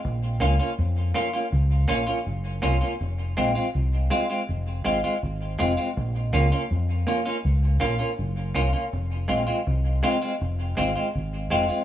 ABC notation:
X:1
M:4/4
L:1/16
Q:1/4=81
K:Bbm
V:1 name="Clean electric guitar"
z2 [B,DF] [B,DF] z2 [B,DF] [B,DF] z2 [B,DF] [B,DF] z2 [B,DF] [B,DF] | z2 [A,CF] [A,CF] z2 [A,CF] [A,CF] z2 [A,CF] [A,CF] z2 [A,CF] [A,CF] | z2 [B,DF] [B,DF] z2 [B,DF] [B,DF] z2 [B,DF] [B,DF] z2 [B,DF] [B,DF] | z2 [A,CF] [A,CF] z2 [A,CF] [A,CF] z2 [A,CF] [A,CF] z2 [A,CF] [A,CF] |]
V:2 name="Fingered electric bass" clef=bass
B,,,2 D,, z F,,2 z2 D,,2 B,,, z G,,,2 C,, z | F,,,2 B,,, z C,,2 z2 F,,,2 A,,, z A,,,2 F,,, z | B,,,2 D,, z F,,2 z2 D,,2 B,,, z G,,,2 C,, z | F,,,2 B,,, z C,,2 z2 F,,,2 A,,, z A,,,2 F,,, z |]